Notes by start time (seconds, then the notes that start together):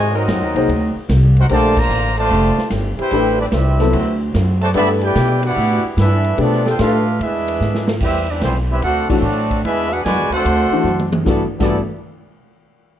Already playing: G#2 C3 D#3 G#3 F#4 C5 D#5 G#5
0.14 F#3 G#3 C4 D#4 F#4 A#4 D#5
0.28 F#2, kick, snare, hi-hat pedal, ride
0.41 D#2
0.54 C2 A#3 D#4 G#4 C5, ride
0.68 D2, kick, ride
0.95 muted upright bass stroke
1.09 C2, kick, snare, hi-hat pedal, ride
1.37 C4 D#4 F#4 A#4 C5 F#5, ride
1.49 A#1 D3 F3 A3 A#3 C4 D4 F4 G4 A#4 C5 D5 A5, kick, ride
1.76 D3 F3 A#3 F4 C5 D5 A#5, kick, crash
1.89 A1, hi-hat pedal
2.16 D3 F3 A3 F4 C5 D5 A5, ride
2.29 F1 A3 C4 D4 G4, kick, ride
2.58 muted upright bass stroke, snare
2.70 G1, kick, snare, hi-hat pedal, ride
2.98 C4 E4 G4 B4 C5 G5, muted upright bass stroke, ride
3.11 A1 G3 A3 C4 D4 G4 B4, kick, ride
3.38 E3 G3 C4 D4 G4 B4 D5
3.52 C2 G3 C4 E4 G4 B4 E5, kick, snare, hi-hat pedal, ride
3.80 F#3 B3 E4 A4, snare, ride
3.93 D2 F#3 C4 D4 F#4, kick, ride
4.34 F#2, kick, snare, hi-hat pedal, ride
4.61 C3 F#3 A3 F#4 C5 D5 A5, ride
4.73 G2 D3 E3 G3 A3 B3 D4 E4 G4 A4 B4 D5 E5 B5, kick, ride
5.01 D4 E4 G4 B4 D5 G5, ride
5.15 B2, kick, snare, hi-hat pedal, ride
5.43 B3 D4 F#4 B4 D5 F#5, ride
5.47 E4
5.54 A2 G3 B3 E4 G4, kick
5.84 muted upright bass stroke
5.97 G2 E3 B3 D4 E4 A4 B4 E5, kick, snare, hi-hat pedal, ride
6.24 ride
6.38 B2 F3 A3 B3 D4 G4 A4 B4 D5, kick, ride
6.42 F4
6.52 snare
6.65 F3 B3 D4 G4 A4 G5, snare
6.69 F4 C5
6.77 A2 A3 D4 F4 G4 B4, kick, snare, hi-hat pedal, ride
6.81 A4 F5
7.19 E2 G#3 B3 D4 E4 G#4 B4 E5, kick, ride
7.48 ride
7.60 G#2, snare, hi-hat pedal
7.74 snare
7.87 snare
8.00 E2 G3 C4 E4 G4 B4 E5, kick, crash
8.30 E3 G3 C4 D4 G4 B4 D5
8.41 B1 E3 G3 B3 C4 E4 C5, kick, snare, hi-hat pedal, ride
8.70 G3 C4 E4 G4 B4 E5
8.82 D2 A3 C4 D4 F#4 A4 C5 F#5, kick, ride
9.09 E3 F#3 A3 C4 D4 F#4 A4 D5, muted upright bass stroke, kick, crash
9.22 A2, hi-hat pedal
9.51 kick, ride
9.64 E2 G#3 B3 D4 E4 G#4 B4 E5, kick, ride
9.91 B3 D4 F#4 G#4 B4 F#5
10.04 F#2 B2 D3 G#3 F#4 B4 D5 G#5, kick, snare, hi-hat pedal, ride
10.17 E2
10.30 D2 A3 C4 D4 F#4 A4 C5 F#5, ride
10.45 D2, kick, ride
10.70 E3 A3 D4 F#4, muted upright bass stroke
10.84 F#2, hi-hat pedal, mid tom
10.99 mid tom
11.12 mid tom
11.24 G1 G2 D3 E3 A3 B3 D4 E4 F#4, kick, snare
11.28 A4 D5
11.58 G1 G2 D3 E3 A3 B3 D4 E4 F#4 A4 D5, kick, snare, crash